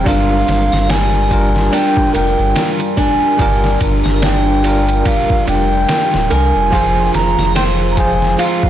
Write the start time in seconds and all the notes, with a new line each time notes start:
0.04 G1 G3 D4 F4 A#4 F5, kick, ride, shaker
0.08 A#4
0.47 G1, snare, ride, shaker
0.72 G1, snare, triangle, shaker
0.89 G3 G#5, snare, ride, shaker
1.14 shaker
1.29 G3 D4 F4, kick, ride, shaker
1.34 A#4
1.54 snare, shaker
1.72 D4 G5, ride, shaker
1.97 kick
2.13 F1 A#4 G5, ride, shaker
2.38 G1, shaker
2.55 snare, ride, shaker
2.80 ride
2.97 D4 G#5, kick, ride, shaker
3.21 shaker
3.37 G1 G3 D4 F4 D5, kick, ride, shaker
3.42 A#4
3.64 snare
3.80 G1, kick, ride, shaker
4.04 G1, snare, triangle, shaker
4.22 D4 G5, snare, ride, shaker
4.46 shaker
4.62 G3 D4 F4, ride, shaker
4.67 A#4
4.89 ride, shaker
5.05 G4 F5, kick, ride, shaker
5.30 kick
5.47 F1 D4 G5, ride, shaker
5.71 shaker
5.89 snare, ride, shaker
6.14 D1, snare
6.30 C2 A#4 G#5, ride, shaker
6.55 F1, shaker
6.71 F1 F3 G#3 C4 F4 G#4 C5, kick, ride, shaker
6.75 C5
7.14 F1 A#5, snare, ride, shaker
7.38 F1, snare, triangle, shaker
7.55 C5 G5, snare, ride, shaker
7.80 shaker
7.92 F3 A#5
7.97 F4 G#4 C5 G#5, kick, ride, shaker
8.22 snare, shaker
8.38 F4 F5, ride, shaker
8.63 kick